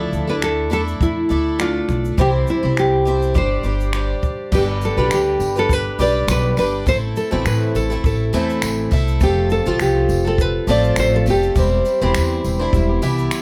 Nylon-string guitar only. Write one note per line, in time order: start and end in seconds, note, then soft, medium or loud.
0.00 0.29 A4 medium
0.29 0.34 B4 medium
0.44 0.70 A4 medium
0.73 0.81 A4 medium
1.03 1.60 E4 medium
1.61 2.20 F4 medium
2.21 2.28 G4 medium
2.50 2.79 E4 medium
2.79 3.37 G4 medium
3.38 4.20 C5 medium
4.55 4.62 G4 medium
4.85 5.14 A4 medium
5.14 5.59 G4 medium
5.59 5.73 A4 medium
5.73 6.01 B4 medium
6.01 6.30 D5 medium
6.31 6.58 B4 medium
6.59 6.67 B4 medium
6.89 6.96 C5 medium
7.17 7.44 A4 medium
7.46 7.76 B4 medium
7.76 8.05 A4 medium
8.06 8.89 A4 medium
9.23 9.51 G4 medium
9.52 9.81 A4 medium
9.82 10.27 G4 medium
10.27 10.41 A4 medium
10.41 10.70 B4 medium
10.70 10.99 D5 medium
10.99 11.15 C5 medium
11.16 11.28 A4 medium
11.30 11.83 G4 medium